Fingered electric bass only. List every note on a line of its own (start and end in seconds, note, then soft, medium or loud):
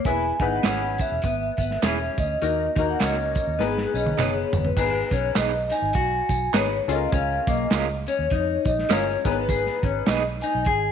0.05 0.31 E1 medium
0.40 0.58 G#1 medium
0.65 0.99 G#1 medium
1.12 1.20 E1 medium
1.24 1.49 G#1 medium
1.58 1.76 G#1 medium
1.83 2.08 E1 loud
2.18 2.35 D2 medium
2.42 2.67 D#2 medium
2.76 2.94 D#2 medium
3.01 3.35 C#2 medium
3.47 3.56 D#2 medium
3.59 3.84 G#1 medium
3.94 4.12 B1 loud
4.18 4.43 F#1 medium
4.53 4.71 G1 medium
4.77 5.02 G#1 medium
5.12 5.29 B1 medium
5.36 5.70 B1 medium
5.82 5.91 G#1 medium
5.95 6.20 B1 medium
6.30 6.47 B1 medium
6.53 6.79 G#1 medium
6.88 7.06 C#2 medium
7.13 7.38 C#2 loud
7.47 7.65 B1 medium
7.72 8.06 C#2 medium
8.19 8.28 D#2 medium
8.32 8.57 F2 medium
8.66 8.83 A#1 medium
8.90 9.15 G1 medium
9.25 9.67 G#1 loud
9.83 10.01 G#1 medium
10.08 10.41 B1 medium
10.55 10.68 B1 medium
10.67 10.92 G#1 medium